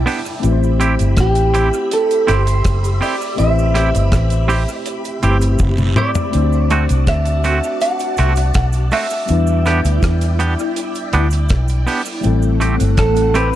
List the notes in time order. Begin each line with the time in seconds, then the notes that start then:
Already playing: G3 B3 D4 E4 B4 D5 E5 G5 A5 B5
0.06 B3 D4 G4, open hi-hat, cabasa
0.26 cabasa
0.40 A3 C4 E4 B5, closed hi-hat
0.44 A1 G4 B4 E5, cabasa
0.52 C5
0.63 cabasa
0.80 C4 E4 G4, closed hi-hat, cabasa
0.99 G1, closed hi-hat, cabasa
1.17 A1 G4, kick, cross-stick, closed hi-hat, cabasa
1.35 closed hi-hat, cabasa
1.54 C4 E4 G4, closed hi-hat, cabasa
1.73 cabasa
1.91 A4, closed hi-hat, cabasa
2.11 closed hi-hat, cabasa
2.27 G1 C4 E4 G4 C5, closed hi-hat, cabasa
2.46 muted clean electric guitar stroke, closed hi-hat, cabasa
2.64 F#1, kick, cross-stick, closed hi-hat, cabasa
2.84 closed hi-hat, cabasa
3.01 C4 E4 G4 D5, open hi-hat, cabasa
3.21 cabasa
3.36 A3 C4 E4 E5, closed hi-hat, cabasa
3.40 A1 G4 B4
3.48 C5
3.59 cabasa
3.74 C4 E4 G4, cross-stick, closed hi-hat, cabasa
3.95 G1, closed hi-hat, cabasa
4.12 A1, kick, cross-stick, closed hi-hat, cabasa
4.30 closed hi-hat, cabasa
4.48 C4 E4 G4, open hi-hat, cabasa
4.68 cabasa
4.79 D5
4.86 closed hi-hat, cabasa
5.05 closed hi-hat, cabasa
5.22 G1 A3 C4 E4 G4 B4, closed hi-hat, cabasa
5.31 C5
5.41 muted clean electric guitar stroke, closed hi-hat, cabasa
5.59 F#1, kick, high tom, cabasa, long guiro
5.78 mid tom, cabasa
5.96 C4 E4 G4 D5, mid tom, cabasa
6.15 floor tom, cabasa
6.31 A3 C4 D4 F#4 D5 A5, closed hi-hat, cabasa
6.35 D2 E4 C5
6.42 F#4
6.53 cabasa
6.70 A3 C4 F#4, closed hi-hat, cabasa
6.89 C2, closed hi-hat, cabasa
7.07 D2 E5, kick, cross-stick, closed hi-hat, cabasa
7.25 closed hi-hat, cabasa
7.44 A3 C4 F#4, closed hi-hat, cabasa
7.63 cabasa
7.81 F#5, closed hi-hat, cabasa
7.99 closed hi-hat, cabasa
8.17 C2 A3 C4 F#4, closed hi-hat, cabasa
8.36 muted clean electric guitar stroke, closed hi-hat, cabasa
8.54 B1 F#5, kick, cross-stick, closed hi-hat, cabasa
8.73 closed hi-hat, cabasa
8.91 A3 C4 F#4 E5, open hi-hat, cabasa
9.10 cabasa
9.26 G3 B3 D4 E4 D5 G5, closed hi-hat, cabasa
9.30 E2 E4 B4
9.47 cabasa
9.66 B3 D4 G4, cross-stick, closed hi-hat, cabasa
9.85 D2, closed hi-hat, cabasa
10.03 E2, kick, cross-stick, closed hi-hat, cabasa
10.21 closed hi-hat, cabasa
10.39 B3 D4 G4, closed hi-hat, cabasa
10.59 cabasa
10.76 closed hi-hat, cabasa
10.95 closed hi-hat, cabasa
11.13 D2 B3 D4 G4, closed hi-hat, cabasa
11.31 muted clean electric guitar stroke, closed hi-hat, cabasa
11.49 B1, kick, cross-stick, closed hi-hat, cabasa
11.68 closed hi-hat, cabasa
11.87 B3 D4 G4, open hi-hat, cabasa
12.05 cabasa
12.21 G3 A3 C4 F#5, closed hi-hat, cabasa
12.25 A1 E4 A4
12.42 cabasa
12.60 A3 C4 G4, closed hi-hat, cabasa
12.80 G1, closed hi-hat, cabasa
12.97 A1 A4, kick, cross-stick, closed hi-hat, cabasa
13.16 closed hi-hat, cabasa
13.34 A3 C4 G4 B4, closed hi-hat, cabasa